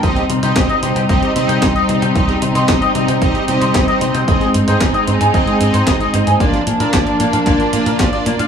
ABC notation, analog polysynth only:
X:1
M:4/4
L:1/16
Q:1/4=113
K:Cm
V:1 name="Analog polysynth"
[CEGe]2 z [CEGe]3 [CEGe]2 [CEGe]2 [CEGe]3 [CEGe]3 | [CEGe]2 z [CEGe]3 [CEGe]2 [CEGe]2 [CEGe]3 [CEGe]3 | [CEAe]2 z [CEAe]3 [CEAe]2 [CEAe]2 [CEAe]3 [CEAe]3 | [B,DFd]2 z [B,DFd]3 [B,DFd]2 [B,DFd]2 [B,DFd]3 [B,DFd]3 |]